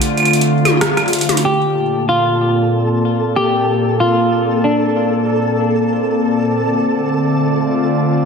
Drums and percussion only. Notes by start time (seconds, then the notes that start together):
0.02 closed hi-hat
0.17 closed hi-hat, claves
0.20 claves
0.23 closed hi-hat, claves
0.25 claves
0.28 claves
0.31 closed hi-hat, claves
0.41 closed hi-hat
0.65 closed hi-hat, high tom, claves
0.81 cross-stick, closed hi-hat
0.97 cross-stick, closed hi-hat, claves
1.08 closed hi-hat
1.13 closed hi-hat
1.19 closed hi-hat
1.21 closed hi-hat
1.29 closed hi-hat, high tom
1.37 closed hi-hat